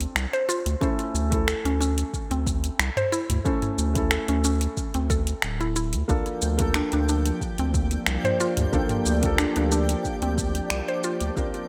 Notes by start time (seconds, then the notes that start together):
Already playing: C4 D4 F4 A4
0.01 closed hi-hat, shaker
0.15 C2, finger snap, shaker
0.33 C5, shaker
0.49 F4, shaker
0.66 D2, closed hi-hat, shaker
0.81 A3 C#4 E4 A4, kick, shaker
0.99 closed hi-hat, shaker
1.14 D2, shaker
1.30 A3 E4, kick, closed hi-hat, shaker
1.34 A4
1.48 A4, finger snap, shaker
1.65 D2 C#4, closed hi-hat, shaker
1.81 C#4, shaker
1.98 closed hi-hat, shaker
2.14 kick, shaker
2.31 D2 C4, closed hi-hat, shaker
2.47 kick, shaker
2.64 closed hi-hat, shaker
2.79 C2, finger snap, shaker
2.97 C5, mid tom, shaker
3.12 E4, shaker
3.30 D2, closed hi-hat, mid tom, shaker
3.44 A3 C#4 E4 A4, kick, shaker
3.62 closed hi-hat, mid tom, shaker
3.78 D2, shaker
3.94 A3 C#4 E4, kick, closed hi-hat, shaker
3.98 A4
4.11 A4, finger snap, shaker
4.28 D2 C#4, closed hi-hat, shaker
4.44 C#4, shaker
4.61 closed hi-hat, shaker
4.77 kick, shaker
4.94 D2 C4, closed hi-hat, shaker
5.10 A4, kick, shaker
5.27 closed hi-hat, shaker
5.42 D1, finger snap, shaker
5.61 E4, shaker
5.76 E4, shaker
5.93 D2, closed hi-hat, shaker
6.08 F3 A#3 D4 F4 G4 A4 G5, kick, udu, shaker
6.26 A#3, closed hi-hat, shaker
6.42 D2, shaker
6.58 A#3 D4 F4, kick, closed hi-hat, shaker
6.62 A4
6.74 D4, finger snap, shaker
6.92 D2 D4, closed hi-hat, shaker
7.09 D4, shaker
7.26 closed hi-hat, shaker
7.41 kick, shaker
7.58 D2 C4 D4, closed hi-hat, shaker
7.74 kick, shaker
7.91 closed hi-hat, shaker
7.99 D5
8.06 C2, finger snap, shaker
8.24 C5, mid tom, shaker
8.40 F4, shaker
8.46 G4
8.57 D2, closed hi-hat, mid tom, shaker
8.72 A#3 D4 F4 A4, kick, udu, shaker
8.89 closed hi-hat, mid tom, shaker
9.06 D2, shaker
9.21 A#3 D4 F4, kick, closed hi-hat, shaker
9.25 A4
9.38 D4, finger snap, shaker
9.56 D2 D4, closed hi-hat, shaker
9.72 D4, shaker
9.89 closed hi-hat, shaker
10.05 kick, shaker
10.22 D2 C4, closed hi-hat, shaker
10.38 kick, shaker
10.55 closed hi-hat, shaker
10.70 C2, finger snap, shaker
10.88 C5, shaker
11.03 F4, shaker
11.21 D2, closed hi-hat, shaker
11.35 C4 D4 F4 A#4, kick, udu, shaker
11.54 closed hi-hat, shaker